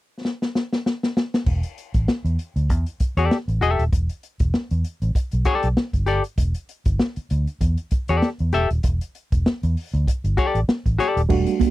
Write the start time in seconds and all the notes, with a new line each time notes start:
0.25 snare
0.42 snare
0.55 snare
0.73 snare
0.86 snare
1.03 snare
1.17 snare
1.34 snare
1.46 E1, kick, crash
1.63 closed hi-hat
1.78 closed hi-hat
1.94 A1, kick, closed hi-hat
2.08 muted fingered electric bass stroke, snare
2.25 E2, closed hi-hat
2.39 closed hi-hat
2.56 D2, closed hi-hat
2.70 E2, kick, closed hi-hat
2.86 closed hi-hat
3.00 muted fingered electric bass stroke, kick, closed hi-hat
3.17 E2 G4 A4 D5, closed hi-hat
3.31 snare
3.48 A1, closed hi-hat
3.61 E1 G4 A4 E5, closed hi-hat
3.79 D#1, closed hi-hat
3.93 E1, kick, closed hi-hat
4.09 closed hi-hat
4.23 closed hi-hat
4.40 E1, kick, closed hi-hat
4.54 snare
4.71 E2, closed hi-hat
4.84 closed hi-hat
5.02 A1, closed hi-hat
5.15 muted fingered electric bass stroke, kick, closed hi-hat
5.31 B1, closed hi-hat
5.45 G4 A4 D5, kick, closed hi-hat
5.63 B1, closed hi-hat
5.77 muted fingered electric bass stroke, snare
5.93 G1, kick, closed hi-hat
6.06 G4 A4 D5, closed hi-hat
6.24 closed hi-hat
6.38 E1, kick, closed hi-hat
6.54 closed hi-hat
6.69 closed hi-hat
6.85 G1, kick, closed hi-hat
6.99 snare
7.16 muted fingered electric bass stroke, closed hi-hat
7.30 D2, closed hi-hat
7.47 closed hi-hat
7.61 E2, kick, closed hi-hat
7.77 closed hi-hat
7.91 muted fingered electric bass stroke, kick, closed hi-hat
8.08 E2 G4 A4 D5, closed hi-hat
8.22 snare
8.39 E2, closed hi-hat
8.52 E1 G4 A4 E5, snare, closed hi-hat
8.71 D#1, closed hi-hat
8.83 E1, kick, closed hi-hat
9.01 closed hi-hat
9.15 closed hi-hat
9.32 E1, kick, closed hi-hat
9.46 muted fingered electric bass stroke, snare
9.63 E2, closed hi-hat
9.77 open hi-hat
9.94 D2, closed hi-hat
10.07 kick, closed hi-hat
10.24 G1, closed hi-hat
10.37 G4 A4 D5, kick, closed hi-hat
10.55 A1, closed hi-hat
10.68 muted fingered electric bass stroke, snare
10.86 A1, kick, closed hi-hat
10.99 G4 A4 D5, snare, closed hi-hat
11.17 D#1, closed hi-hat
11.29 E1 G3 A3 D4 F#4, kick, crash, muted conga, low conga
11.46 closed hi-hat, muted conga
11.60 kick, closed hi-hat, high conga